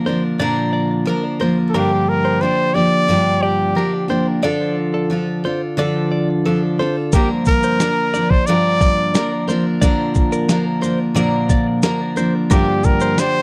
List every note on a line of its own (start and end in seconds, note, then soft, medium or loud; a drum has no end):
0.00 0.39 D3 medium
0.06 0.39 F3 soft
0.06 0.40 A#3 soft
0.06 0.40 D4 soft
0.06 0.40 A#4 soft
0.06 0.22 C5 medium
0.39 1.07 A#2 medium
0.39 1.74 D3 medium
0.39 1.05 F3 medium
0.39 1.07 A#3 medium
0.39 1.08 D4 medium
0.39 1.09 A#4 medium
0.39 0.72 D5 medium
0.73 0.89 D5 medium
1.06 1.40 F3 medium
1.06 1.41 A#3 medium
1.06 1.40 D4 medium
1.06 1.23 A#4 medium
1.06 1.38 A#4 medium
1.40 1.74 F3 soft
1.40 1.74 A#3 soft
1.40 1.74 D4 soft
1.40 1.74 A#4 medium
1.40 1.57 C5 medium
1.69 1.77 A4 medium
1.74 2.42 G2 medium
1.74 3.08 D3 medium
1.74 2.41 F3 medium
1.74 2.41 A#3 medium
1.74 2.43 D4 medium
1.74 2.10 G4 medium
1.74 2.43 G4 medium
1.74 1.91 A#4 medium
2.09 2.43 A#4 medium
2.25 2.41 C5 medium
2.41 2.75 F3 medium
2.41 2.75 A#3 medium
2.41 2.74 D4 medium
2.41 2.73 G4 medium
2.41 2.76 C5 medium
2.74 3.08 F3 soft
2.74 3.08 A#3 soft
2.74 3.09 D4 soft
2.74 3.09 G4 soft
2.74 3.43 D5 loud
2.74 3.08 D5 medium
3.08 3.76 G2 medium
3.08 4.42 D3 medium
3.08 3.75 F3 medium
3.08 3.75 A#3 medium
3.08 3.77 D4 medium
3.08 3.77 G4 medium
3.42 4.10 G4 medium
3.42 3.75 D5 medium
3.75 4.10 F3 soft
3.75 4.09 A#3 soft
3.75 4.08 D4 medium
3.75 4.07 G4 medium
3.75 3.93 A#4 medium
4.08 4.42 F3 soft
4.08 4.44 A#3 soft
4.08 4.43 D4 soft
4.08 4.43 G4 medium
4.08 4.26 C5 medium
4.43 5.77 D3 medium
4.43 5.09 F3 medium
4.43 5.10 D4 medium
4.43 5.12 F4 medium
4.43 5.12 A4 medium
4.43 4.75 D5 medium
4.94 5.26 A4 medium
5.10 5.44 F3 medium
5.10 5.45 D4 medium
5.10 5.44 F4 medium
5.10 5.43 A4 medium
5.44 5.77 D4 soft
5.44 5.78 F4 soft
5.44 5.78 A4 soft
5.44 5.61 C5 medium
5.77 7.14 D3 medium
5.77 6.45 F3 medium
5.77 6.46 D4 medium
5.77 6.47 F4 medium
5.77 6.46 A4 medium
5.77 6.10 D5 medium
6.12 6.28 D5 medium
6.45 6.79 F3 medium
6.45 6.80 D4 medium
6.45 6.79 F4 medium
6.45 6.62 A4 medium
6.45 6.78 A4 medium
6.79 7.14 D4 soft
6.79 7.14 F4 soft
6.79 7.13 A4 soft
6.79 6.95 C5 medium
7.13 7.81 G2 medium
7.13 8.48 D3 medium
7.13 7.79 F3 medium
7.13 7.81 A#3 medium
7.13 7.82 D4 medium
7.13 7.29 G4 medium
7.13 7.29 A#4 medium
7.13 7.82 A#4 medium
7.13 kick loud
7.13 shaker medium
7.45 8.32 A#4 medium
7.45 kick medium
7.45 shaker soft
7.63 7.80 C5 medium
7.63 shaker soft
7.79 8.13 F3 medium
7.79 8.14 A#3 soft
7.79 8.14 D4 medium
7.79 8.12 A#4 medium
7.79 snare loud
7.79 shaker medium
8.13 8.48 F3 soft
8.13 8.48 A#3 soft
8.13 8.48 D4 soft
8.13 8.47 A#4 soft
8.13 8.46 D5 medium
8.13 shaker soft
8.30 8.48 C5 medium
8.30 kick medium
8.46 9.15 G2 medium
8.46 9.81 D3 medium
8.46 9.15 F3 medium
8.46 9.16 A#3 medium
8.46 9.17 D4 medium
8.46 9.18 A#4 medium
8.46 9.48 D5 medium
8.46 shaker medium
8.81 9.13 D5 medium
8.81 kick medium
8.81 snare soft
8.81 shaker soft
9.15 9.49 F3 medium
9.15 9.49 A#3 medium
9.15 9.48 D4 medium
9.15 9.31 A#4 medium
9.15 9.46 A#4 medium
9.15 snare loud
9.15 shaker medium
9.48 9.81 F3 soft
9.48 9.81 A#3 soft
9.48 9.82 D4 soft
9.48 9.82 A#4 medium
9.48 9.64 C5 medium
9.48 shaker soft
9.81 10.49 A#2 medium
9.81 11.15 D3 medium
9.81 10.48 F3 medium
9.81 10.50 A#3 medium
9.81 10.51 D4 medium
9.81 10.51 A#4 medium
9.81 10.14 D5 medium
9.81 kick loud
9.81 shaker medium
10.15 kick medium
10.15 shaker soft
10.32 10.64 A#4 medium
10.32 shaker soft
10.48 10.83 F3 medium
10.48 10.82 A#3 medium
10.48 10.82 D4 medium
10.48 10.80 A#4 medium
10.48 snare medium
10.48 shaker medium
10.81 11.15 F3 soft
10.81 11.15 A#3 soft
10.81 11.16 D4 soft
10.81 11.16 A#4 soft
10.81 10.99 C5 medium
10.81 shaker soft
11.15 11.83 A#2 medium
11.15 12.49 D3 medium
11.15 11.82 F3 medium
11.15 11.84 A#3 medium
11.15 11.85 D4 medium
11.15 11.85 A#4 medium
11.15 11.48 D5 medium
11.15 shaker medium
11.49 11.66 D5 medium
11.49 kick medium
11.49 snare soft
11.49 shaker soft
11.83 12.17 F3 medium
11.83 12.17 A#3 medium
11.83 12.16 D4 medium
11.83 12.00 A#4 medium
11.83 12.15 A#4 medium
11.83 snare loud
11.83 shaker medium
12.16 12.49 F3 soft
12.16 12.50 A#3 medium
12.16 12.50 D4 medium
12.16 12.50 A#4 medium
12.16 12.33 C5 medium
12.16 shaker soft
12.50 13.18 G2 medium
12.50 13.42 D3 medium
12.50 13.17 F3 medium
12.50 13.17 A#3 medium
12.50 13.19 D4 medium
12.50 13.19 G4 medium
12.50 12.86 G4 medium
12.50 12.67 A#4 medium
12.50 kick loud
12.50 shaker medium
12.84 13.21 A#4 medium
12.84 kick medium
12.84 shaker soft
13.00 13.17 C5 medium
13.00 shaker soft
13.17 13.42 F3 medium
13.17 13.42 A#3 medium
13.17 13.42 D4 medium
13.17 13.42 G4 medium
13.17 13.42 C5 medium
13.17 snare medium
13.17 shaker medium